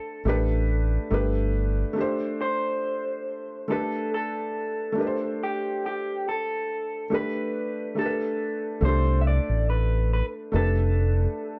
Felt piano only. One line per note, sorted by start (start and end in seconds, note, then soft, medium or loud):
0.00 0.19 A3 medium
0.00 0.23 C4 medium
0.00 0.21 D4 medium
0.00 0.22 G4 medium
0.25 1.09 A3 medium
0.25 1.10 D4 medium
0.25 1.11 G4 medium
0.25 1.12 B4 medium
1.10 1.92 A3 medium
1.10 1.94 D4 medium
1.10 1.97 G4 medium
1.10 1.98 B4 medium
1.93 3.63 A3 medium
1.93 3.64 D4 medium
1.98 3.66 G4 medium
1.98 3.67 C5 medium
3.68 4.91 A3 medium
3.68 4.94 D4 medium
3.68 4.96 G4 medium
3.68 4.99 B4 medium
4.92 7.05 A3 medium
4.92 7.06 D4 medium
4.98 7.08 G4 medium
4.98 5.06 B4 medium
5.07 7.12 C5 medium
7.10 7.94 A3 medium
7.10 7.95 D4 medium
7.10 7.96 G4 medium
7.10 7.98 B4 medium
7.95 8.79 A3 medium
7.95 8.82 D4 medium
7.95 8.83 G4 medium
7.99 8.05 A4 medium
8.06 8.87 B4 medium
8.81 10.50 A3 medium
8.81 10.51 D4 medium
8.86 10.52 G4 medium
8.86 10.54 A4 medium
10.52 11.59 A3 medium
10.52 11.59 D4 medium
10.52 11.59 G4 medium
10.52 11.59 B4 medium